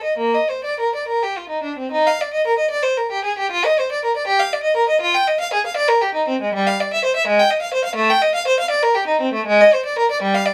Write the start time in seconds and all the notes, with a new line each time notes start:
0.03 D#5
0.18 A#3
0.35 D#5
0.49 C5
0.64 D5
0.80 A#4
0.95 D5
1.08 A#4
1.23 G4
1.37 F4
1.49 D#4
1.63 D4
1.78 C4
1.91 D#4
2.07 F5
2.21 D5
2.34 D#5
2.47 A#4
2.58 D#5
2.70 D5
2.83 C5
2.97 A#4
3.11 G4
3.25 G#4
3.38 G4
3.51 F4
3.65 D#5
3.79 C5
3.92 D5
4.05 A#4
4.17 D5
4.27 G4
4.40 F5
4.53 D5
4.63 D#5
4.76 A#4
4.89 D#5
5.01 F4
5.14 G5
5.27 D#5
5.40 F5
5.53 G#4
5.66 F5
5.77 D5
5.88 A#4
6.01 G4
6.14 D#4
6.28 C4
6.41 G#3
6.54 G3
6.67 F5
6.80 D5
6.93 E5
7.05 C5
7.16 E5
7.27 G#3
7.39 G5
7.50 D#5
7.62 F5
7.74 C5
7.85 F5
7.95 A3
8.10 G5
8.22 D#5
8.35 F5
8.47 C5
8.60 F5
8.70 D5
8.83 A#4
8.95 G4
9.07 D#4
9.21 C4
9.33 A3
9.47 G#3
9.61 D#5
9.73 C5
9.85 D5
9.98 A#4
10.11 D5
10.22 G3
10.34 F5
10.46 D5